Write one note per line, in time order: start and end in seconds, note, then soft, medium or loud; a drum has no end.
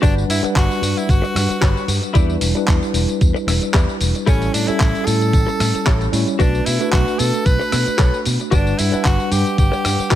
0.02 0.23 G1 loud
0.02 0.40 G3 medium
0.02 0.40 D4 medium
0.02 0.14 D4 loud
0.02 0.23 F#4 loud
0.02 0.23 G4 loud
0.02 0.23 B4 loud
0.02 0.40 B4 medium
0.02 0.23 D5 loud
0.02 0.40 F#5 medium
0.02 kick loud
0.02 closed hi-hat medium
0.02 tambourine soft
0.18 tambourine soft
0.29 0.39 G2 medium
0.29 0.42 E4 loud
0.29 open hi-hat loud
0.29 tambourine medium
0.42 2.12 G3 medium
0.42 2.12 D4 medium
0.42 2.13 B4 loud
0.42 2.12 F#5 medium
0.42 muted clean electric guitar stroke medium
0.42 muted fingered electric bass stroke soft
0.42 closed hi-hat medium
0.42 tambourine soft
0.55 0.66 G1 loud
0.55 0.99 F#4 loud
0.55 muted clean electric guitar stroke soft
0.55 kick loud
0.55 clap loud
0.55 closed hi-hat medium
0.55 tambourine soft
0.71 tambourine soft
0.82 0.92 G2 medium
0.82 open hi-hat loud
0.82 tambourine medium
0.97 1.12 E4 loud
0.97 closed hi-hat medium
0.97 tambourine soft
1.09 1.19 G1 medium
1.09 1.89 F#4 loud
1.09 kick loud
1.09 closed hi-hat medium
1.09 tambourine soft
1.22 muted clean electric guitar stroke loud
1.22 tambourine soft
1.34 1.46 G2 medium
1.34 muted clean electric guitar stroke soft
1.34 cross-stick medium
1.34 open hi-hat loud
1.34 tambourine medium
1.49 muted clean electric guitar stroke soft
1.49 muted fingered electric bass stroke soft
1.49 closed hi-hat medium
1.49 tambourine soft
1.61 1.72 G1 medium
1.61 1.82 F#4 loud
1.61 1.82 G4 medium
1.61 1.83 B4 medium
1.61 1.83 C#5 loud
1.61 kick loud
1.61 clap loud
1.61 closed hi-hat medium
1.61 tambourine soft
1.77 tambourine soft
1.88 1.99 G2 medium
1.88 open hi-hat loud
1.88 tambourine medium
2.02 muted clean electric guitar stroke soft
2.02 closed hi-hat medium
2.02 tambourine soft
2.14 2.35 E2 loud
2.14 2.52 G3 medium
2.14 2.52 D4 medium
2.14 2.35 E4 loud
2.14 2.53 E4 medium
2.14 2.35 G4 loud
2.14 2.35 B4 loud
2.14 2.53 B4 loud
2.14 2.36 D5 loud
2.14 kick loud
2.14 closed hi-hat medium
2.14 tambourine soft
2.30 tambourine soft
2.41 2.52 E1 medium
2.41 open hi-hat loud
2.41 tambourine medium
2.55 4.24 G3 medium
2.55 4.24 D4 medium
2.55 4.24 E4 medium
2.55 4.25 B4 loud
2.55 muted clean electric guitar stroke medium
2.55 closed hi-hat soft
2.55 tambourine soft
2.67 2.79 E2 loud
2.67 muted clean electric guitar stroke soft
2.67 kick loud
2.67 clap loud
2.67 closed hi-hat medium
2.67 tambourine soft
2.83 tambourine soft
2.94 3.05 E1 medium
2.94 open hi-hat loud
2.94 tambourine medium
3.09 closed hi-hat soft
3.09 tambourine soft
3.21 3.32 E2 medium
3.21 kick loud
3.21 closed hi-hat medium
3.21 tambourine soft
3.34 muted clean electric guitar stroke loud
3.34 tambourine soft
3.47 3.58 E1 medium
3.47 muted clean electric guitar stroke soft
3.47 cross-stick medium
3.47 open hi-hat loud
3.47 tambourine medium
3.62 muted clean electric guitar stroke soft
3.62 muted fingered electric bass stroke soft
3.62 closed hi-hat medium
3.62 tambourine soft
3.74 3.85 E2 medium
3.74 3.94 E4 medium
3.74 3.95 G4 medium
3.74 3.95 B4 medium
3.74 3.95 D5 loud
3.74 kick loud
3.74 clap loud
3.74 closed hi-hat medium
3.74 tambourine soft
3.89 tambourine soft
4.01 4.11 E1 loud
4.01 open hi-hat loud
4.01 tambourine medium
4.14 muted clean electric guitar stroke soft
4.14 closed hi-hat medium
4.14 tambourine soft
4.26 4.47 A1 loud
4.26 4.64 G3 medium
4.26 4.65 C#4 medium
4.26 4.55 C#4 medium
4.26 4.47 E4 loud
4.26 4.65 E4 medium
4.26 4.47 G4 loud
4.26 4.48 A4 loud
4.26 4.65 A4 loud
4.26 4.48 C#5 loud
4.26 kick loud
4.26 closed hi-hat medium
4.26 tambourine soft
4.42 closed hi-hat soft
4.42 tambourine soft
4.53 4.64 A2 medium
4.53 4.69 D4 medium
4.53 open hi-hat loud
4.53 tambourine medium
4.67 6.10 G3 medium
4.67 6.10 C#4 medium
4.67 5.07 E4 loud
4.67 6.11 E4 medium
4.67 6.11 A4 loud
4.67 muted clean electric guitar stroke medium
4.67 muted fingered electric bass stroke soft
4.67 closed hi-hat soft
4.67 tambourine soft
4.79 4.91 A1 medium
4.79 muted clean electric guitar stroke soft
4.79 kick loud
4.79 clap loud
4.79 closed hi-hat medium
4.79 tambourine soft
4.95 closed hi-hat soft
4.95 tambourine soft
5.05 5.35 A2 medium
5.05 6.12 A4 loud
5.05 open hi-hat loud
5.05 tambourine medium
5.21 closed hi-hat soft
5.21 tambourine soft
5.33 5.44 A1 loud
5.33 kick loud
5.33 closed hi-hat medium
5.33 tambourine soft
5.47 muted clean electric guitar stroke loud
5.47 tambourine soft
5.59 5.71 A2 loud
5.59 muted clean electric guitar stroke soft
5.59 cross-stick medium
5.59 open hi-hat loud
5.59 tambourine medium
5.74 muted clean electric guitar stroke soft
5.74 muted fingered electric bass stroke soft
5.74 closed hi-hat soft
5.74 tambourine soft
5.86 6.06 A1 loud
5.86 6.07 E4 medium
5.86 6.07 G4 medium
5.86 6.07 A4 medium
5.86 6.08 C#5 loud
5.86 kick loud
5.86 clap loud
5.86 closed hi-hat medium
5.86 tambourine soft
6.01 closed hi-hat soft
6.01 tambourine soft
6.12 6.23 A2 loud
6.12 6.36 G3 loud
6.12 6.37 C#4 medium
6.12 6.37 E4 medium
6.12 6.37 C#5 loud
6.12 open hi-hat loud
6.12 tambourine medium
6.27 muted clean electric guitar stroke soft
6.27 closed hi-hat soft
6.27 tambourine soft
6.39 6.60 B1 loud
6.39 6.77 A3 medium
6.39 6.67 D4 medium
6.39 6.60 F#4 loud
6.39 6.60 A4 medium
6.39 6.60 B4 loud
6.39 6.78 B4 medium
6.39 6.60 D5 loud
6.39 kick loud
6.39 closed hi-hat medium
6.39 tambourine soft
6.55 tambourine soft
6.66 6.77 B2 medium
6.66 6.91 E4 medium
6.66 open hi-hat loud
6.66 tambourine medium
6.79 8.49 A3 medium
6.79 8.49 D4 medium
6.79 8.49 F#4 medium
6.79 8.50 B4 loud
6.79 muted clean electric guitar stroke medium
6.79 tambourine soft
6.92 7.03 B1 medium
6.92 7.20 F#4 loud
6.92 muted clean electric guitar stroke soft
6.92 kick loud
6.92 clap loud
6.92 closed hi-hat medium
6.92 tambourine soft
7.08 tambourine soft
7.19 7.30 B2 medium
7.19 7.47 A4 loud
7.19 open hi-hat loud
7.19 tambourine medium
7.34 closed hi-hat soft
7.34 tambourine soft
7.46 7.56 B1 medium
7.46 8.26 B4 loud
7.46 kick loud
7.46 closed hi-hat medium
7.46 tambourine soft
7.60 muted clean electric guitar stroke loud
7.60 tambourine soft
7.72 7.83 B2 medium
7.72 muted clean electric guitar stroke soft
7.72 cross-stick medium
7.72 open hi-hat loud
7.72 tambourine medium
7.86 muted clean electric guitar stroke soft
7.86 muted fingered electric bass stroke soft
7.86 closed hi-hat soft
7.86 tambourine soft
7.98 8.10 B1 medium
7.98 8.19 F#4 loud
7.98 8.19 A4 medium
7.98 8.20 B4 medium
7.98 8.20 C#5 loud
7.98 kick loud
7.98 clap loud
7.98 closed hi-hat medium
7.98 tambourine soft
8.14 tambourine soft
8.25 8.36 B2 medium
8.25 open hi-hat loud
8.25 tambourine medium
8.40 muted clean electric guitar stroke soft
8.40 closed hi-hat soft
8.40 tambourine soft
8.51 8.72 G1 loud
8.51 8.89 G3 medium
8.51 8.89 D4 medium
8.51 8.80 D4 medium
8.51 8.72 F#4 loud
8.51 8.73 G4 loud
8.51 8.90 B4 loud
8.51 8.73 B4 medium
8.51 8.73 D5 loud
8.51 8.90 F#5 medium
8.51 kick loud
8.51 closed hi-hat medium
8.51 tambourine soft
8.67 tambourine soft
8.78 8.89 G2 medium
8.78 9.05 E4 loud
8.78 open hi-hat loud
8.78 tambourine medium
8.91 10.15 G3 medium
8.91 10.15 D4 medium
8.91 10.15 B4 loud
8.91 10.15 F#5 medium
8.91 muted clean electric guitar stroke medium
8.91 muted fingered electric bass stroke soft
8.91 closed hi-hat medium
8.91 tambourine soft
9.04 9.16 G1 medium
9.04 9.33 F#4 loud
9.04 muted clean electric guitar stroke soft
9.04 kick loud
9.04 clap loud
9.04 closed hi-hat medium
9.04 tambourine soft
9.20 tambourine soft
9.31 9.42 G2 medium
9.31 9.58 G4 loud
9.31 open hi-hat loud
9.31 tambourine medium
9.46 closed hi-hat soft
9.46 tambourine soft
9.58 9.69 G1 medium
9.58 10.15 G4 loud
9.58 kick loud
9.58 closed hi-hat medium
9.58 tambourine soft
9.72 muted clean electric guitar stroke loud
9.72 tambourine soft
9.84 9.95 G2 medium
9.84 muted clean electric guitar stroke soft
9.84 cross-stick medium
9.84 open hi-hat loud
9.84 tambourine medium
9.99 muted clean electric guitar stroke soft
9.99 muted fingered electric bass stroke soft
9.99 closed hi-hat medium
9.99 tambourine soft
10.10 10.15 G1 medium
10.10 10.15 F#4 loud
10.10 10.15 G4 medium
10.10 10.15 B4 medium
10.10 kick loud
10.10 clap loud
10.10 closed hi-hat medium
10.10 tambourine soft